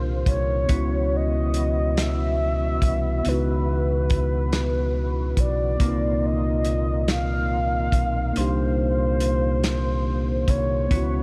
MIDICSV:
0, 0, Header, 1, 6, 480
1, 0, Start_track
1, 0, Tempo, 851064
1, 393, Time_signature, 6, 3, 24, 8
1, 6333, End_track
2, 0, Start_track
2, 0, Title_t, "Soft synth lead"
2, 0, Program_c, 0, 80
2, 0, Note_on_c, 0, 72, 114
2, 157, Note_off_c, 0, 72, 0
2, 161, Note_on_c, 0, 73, 96
2, 656, Note_on_c, 0, 75, 109
2, 664, Note_off_c, 0, 73, 0
2, 1136, Note_on_c, 0, 76, 127
2, 1144, Note_off_c, 0, 75, 0
2, 1852, Note_on_c, 0, 71, 108
2, 1860, Note_off_c, 0, 76, 0
2, 3046, Note_on_c, 0, 74, 102
2, 3055, Note_off_c, 0, 71, 0
2, 3529, Note_on_c, 0, 75, 105
2, 3538, Note_off_c, 0, 74, 0
2, 3999, Note_off_c, 0, 75, 0
2, 4003, Note_on_c, 0, 77, 119
2, 4721, Note_on_c, 0, 72, 113
2, 4729, Note_off_c, 0, 77, 0
2, 5923, Note_on_c, 0, 73, 92
2, 5931, Note_off_c, 0, 72, 0
2, 6333, Note_off_c, 0, 73, 0
2, 6333, End_track
3, 0, Start_track
3, 0, Title_t, "Tine electric piano"
3, 0, Program_c, 1, 4
3, 0, Control_c, 1, 64, 127
3, 0, Note_on_c, 1, 58, 60
3, 0, Note_on_c, 1, 62, 59
3, 0, Note_on_c, 1, 63, 58
3, 0, Note_on_c, 1, 67, 64
3, 363, Note_off_c, 1, 58, 0
3, 370, Note_off_c, 1, 62, 0
3, 374, Note_on_c, 1, 59, 60
3, 377, Note_off_c, 1, 63, 0
3, 385, Note_off_c, 1, 67, 0
3, 388, Note_on_c, 1, 61, 60
3, 401, Control_c, 1, 64, 0
3, 404, Note_on_c, 1, 64, 60
3, 418, Note_on_c, 1, 66, 70
3, 493, Control_c, 1, 64, 127
3, 1801, Note_off_c, 1, 59, 0
3, 1808, Note_off_c, 1, 61, 0
3, 1816, Note_off_c, 1, 64, 0
3, 1821, Note_on_c, 1, 59, 62
3, 1823, Note_off_c, 1, 66, 0
3, 1839, Note_on_c, 1, 63, 57
3, 1852, Note_on_c, 1, 64, 53
3, 1868, Note_on_c, 1, 66, 75
3, 3244, Note_off_c, 1, 59, 0
3, 3253, Note_off_c, 1, 63, 0
3, 3259, Note_off_c, 1, 64, 0
3, 3266, Note_on_c, 1, 58, 66
3, 3267, Note_off_c, 1, 66, 0
3, 3278, Note_on_c, 1, 60, 53
3, 3280, Control_c, 1, 64, 0
3, 3295, Note_on_c, 1, 63, 56
3, 3310, Note_on_c, 1, 65, 68
3, 3371, Control_c, 1, 64, 127
3, 4686, Note_off_c, 1, 58, 0
3, 4693, Note_off_c, 1, 60, 0
3, 4697, Note_on_c, 1, 58, 62
3, 4701, Note_off_c, 1, 63, 0
3, 4708, Note_off_c, 1, 65, 0
3, 4714, Note_on_c, 1, 62, 61
3, 4727, Note_on_c, 1, 63, 55
3, 4741, Note_on_c, 1, 67, 71
3, 6122, Note_off_c, 1, 58, 0
3, 6130, Note_off_c, 1, 62, 0
3, 6137, Note_off_c, 1, 63, 0
3, 6139, Note_on_c, 1, 59, 67
3, 6144, Note_off_c, 1, 67, 0
3, 6153, Note_on_c, 1, 61, 58
3, 6160, Control_c, 1, 64, 0
3, 6169, Note_on_c, 1, 64, 61
3, 6182, Note_on_c, 1, 66, 76
3, 6251, Control_c, 1, 64, 127
3, 6333, Note_off_c, 1, 59, 0
3, 6333, Note_off_c, 1, 61, 0
3, 6333, Note_off_c, 1, 64, 0
3, 6333, Note_off_c, 1, 66, 0
3, 6333, End_track
4, 0, Start_track
4, 0, Title_t, "Tonewheel organ"
4, 0, Program_c, 2, 16
4, 0, Note_on_c, 2, 46, 60
4, 0, Note_on_c, 2, 51, 56
4, 0, Note_on_c, 2, 58, 56
4, 0, Note_on_c, 2, 65, 64
4, 371, Note_off_c, 2, 51, 0
4, 372, Note_off_c, 2, 58, 0
4, 372, Note_off_c, 2, 65, 0
4, 373, Note_off_c, 2, 46, 0
4, 387, Note_on_c, 2, 66, 73
4, 388, Note_on_c, 2, 47, 64
4, 388, Note_on_c, 2, 52, 59
4, 390, Note_on_c, 2, 64, 55
4, 391, Note_on_c, 2, 59, 54
4, 1817, Note_off_c, 2, 64, 0
4, 1836, Note_on_c, 2, 49, 57
4, 3247, Note_off_c, 2, 66, 0
4, 3248, Note_off_c, 2, 47, 0
4, 3248, Note_off_c, 2, 52, 0
4, 3249, Note_off_c, 2, 59, 0
4, 3260, Note_off_c, 2, 49, 0
4, 3276, Note_on_c, 2, 46, 63
4, 3276, Note_on_c, 2, 65, 73
4, 3278, Note_on_c, 2, 51, 58
4, 3278, Note_on_c, 2, 58, 61
4, 3278, Note_on_c, 2, 63, 56
4, 4701, Note_off_c, 2, 63, 0
4, 4709, Note_on_c, 2, 48, 53
4, 6132, Note_off_c, 2, 46, 0
4, 6132, Note_off_c, 2, 65, 0
4, 6133, Note_off_c, 2, 51, 0
4, 6133, Note_off_c, 2, 58, 0
4, 6136, Note_off_c, 2, 48, 0
4, 6155, Note_on_c, 2, 47, 66
4, 6155, Note_on_c, 2, 59, 61
4, 6156, Note_on_c, 2, 52, 57
4, 6156, Note_on_c, 2, 64, 56
4, 6157, Note_on_c, 2, 66, 69
4, 6333, Note_off_c, 2, 47, 0
4, 6333, Note_off_c, 2, 52, 0
4, 6333, Note_off_c, 2, 59, 0
4, 6333, Note_off_c, 2, 64, 0
4, 6333, Note_off_c, 2, 66, 0
4, 6333, End_track
5, 0, Start_track
5, 0, Title_t, "Fingered electric bass"
5, 0, Program_c, 3, 33
5, 0, Note_on_c, 3, 36, 96
5, 134, Note_off_c, 3, 36, 0
5, 153, Note_on_c, 3, 36, 85
5, 370, Note_off_c, 3, 36, 0
5, 396, Note_on_c, 3, 37, 99
5, 1572, Note_off_c, 3, 37, 0
5, 1595, Note_on_c, 3, 36, 86
5, 1811, Note_off_c, 3, 36, 0
5, 1839, Note_on_c, 3, 37, 99
5, 3013, Note_off_c, 3, 37, 0
5, 3034, Note_on_c, 3, 35, 79
5, 3251, Note_off_c, 3, 35, 0
5, 3276, Note_on_c, 3, 36, 102
5, 4452, Note_off_c, 3, 36, 0
5, 4474, Note_on_c, 3, 35, 87
5, 4691, Note_off_c, 3, 35, 0
5, 4723, Note_on_c, 3, 36, 107
5, 5895, Note_off_c, 3, 36, 0
5, 5914, Note_on_c, 3, 36, 95
5, 6131, Note_off_c, 3, 36, 0
5, 6157, Note_on_c, 3, 37, 90
5, 6333, Note_off_c, 3, 37, 0
5, 6333, End_track
6, 0, Start_track
6, 0, Title_t, "Drums"
6, 148, Note_on_c, 9, 36, 78
6, 149, Note_on_c, 9, 42, 65
6, 205, Note_off_c, 9, 36, 0
6, 205, Note_off_c, 9, 42, 0
6, 388, Note_on_c, 9, 42, 78
6, 391, Note_on_c, 9, 36, 95
6, 445, Note_off_c, 9, 42, 0
6, 447, Note_off_c, 9, 36, 0
6, 868, Note_on_c, 9, 42, 69
6, 925, Note_off_c, 9, 42, 0
6, 1113, Note_on_c, 9, 42, 75
6, 1115, Note_on_c, 9, 38, 108
6, 1170, Note_off_c, 9, 42, 0
6, 1172, Note_off_c, 9, 38, 0
6, 1589, Note_on_c, 9, 36, 82
6, 1591, Note_on_c, 9, 42, 66
6, 1646, Note_off_c, 9, 36, 0
6, 1647, Note_off_c, 9, 42, 0
6, 1831, Note_on_c, 9, 42, 83
6, 1888, Note_off_c, 9, 42, 0
6, 2311, Note_on_c, 9, 42, 71
6, 2315, Note_on_c, 9, 36, 87
6, 2367, Note_off_c, 9, 42, 0
6, 2372, Note_off_c, 9, 36, 0
6, 2552, Note_on_c, 9, 42, 71
6, 2554, Note_on_c, 9, 38, 103
6, 2609, Note_off_c, 9, 42, 0
6, 2611, Note_off_c, 9, 38, 0
6, 3029, Note_on_c, 9, 36, 80
6, 3029, Note_on_c, 9, 42, 60
6, 3085, Note_off_c, 9, 36, 0
6, 3086, Note_off_c, 9, 42, 0
6, 3271, Note_on_c, 9, 36, 92
6, 3271, Note_on_c, 9, 42, 77
6, 3327, Note_off_c, 9, 36, 0
6, 3327, Note_off_c, 9, 42, 0
6, 3748, Note_on_c, 9, 42, 70
6, 3805, Note_off_c, 9, 42, 0
6, 3993, Note_on_c, 9, 42, 76
6, 3995, Note_on_c, 9, 38, 102
6, 4050, Note_off_c, 9, 42, 0
6, 4052, Note_off_c, 9, 38, 0
6, 4468, Note_on_c, 9, 36, 86
6, 4472, Note_on_c, 9, 42, 62
6, 4525, Note_off_c, 9, 36, 0
6, 4528, Note_off_c, 9, 42, 0
6, 4714, Note_on_c, 9, 42, 81
6, 4771, Note_off_c, 9, 42, 0
6, 5191, Note_on_c, 9, 42, 67
6, 5248, Note_off_c, 9, 42, 0
6, 5435, Note_on_c, 9, 42, 76
6, 5437, Note_on_c, 9, 38, 111
6, 5491, Note_off_c, 9, 42, 0
6, 5493, Note_off_c, 9, 38, 0
6, 5909, Note_on_c, 9, 36, 78
6, 5910, Note_on_c, 9, 42, 66
6, 5966, Note_off_c, 9, 36, 0
6, 5966, Note_off_c, 9, 42, 0
6, 6152, Note_on_c, 9, 36, 96
6, 6154, Note_on_c, 9, 42, 79
6, 6209, Note_off_c, 9, 36, 0
6, 6210, Note_off_c, 9, 42, 0
6, 6333, End_track
0, 0, End_of_file